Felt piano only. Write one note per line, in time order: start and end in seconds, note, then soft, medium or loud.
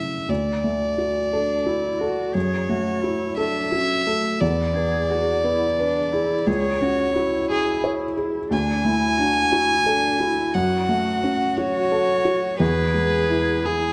0.00 0.25 F#2 soft
0.00 0.31 C#3 soft
0.00 0.32 A3 soft
0.00 0.32 E4 soft
0.29 2.31 D2 medium
0.64 1.19 A3 soft
0.98 1.53 F#4 soft
1.33 1.87 A4 soft
1.66 2.21 F#4 soft
2.01 2.35 A4 soft
2.35 4.37 F#2 medium
2.69 3.24 A3 soft
3.04 3.59 F#4 soft
3.37 3.93 A4 soft
3.72 4.27 F#4 soft
4.07 4.41 A4 soft
4.41 6.43 E2 medium
4.76 5.31 B3 soft
5.10 5.66 G#4 soft
5.44 5.99 B3 medium
5.80 6.34 B4 medium
6.14 6.48 G#4 medium
6.47 8.47 C#2 medium
6.81 7.36 C#4 medium
7.16 7.71 F#4 medium
7.50 8.05 G#4 medium
7.84 8.38 C#5 medium
8.17 8.51 G#4 medium
8.51 10.51 D2 medium
8.85 9.40 A3 medium
9.19 9.74 D4 medium
9.52 10.07 F#4 medium
9.86 10.41 A4 medium
10.20 10.55 F#4 medium
10.55 12.56 F#2 medium
10.89 11.43 A3 medium
11.23 11.78 C#4 medium
11.58 12.12 F#4 medium
11.92 12.47 A4 medium
12.25 12.60 F#4 medium
12.60 13.93 E2 medium
12.94 13.51 G#3 medium
13.30 13.87 E4 medium
13.65 13.93 G#4 medium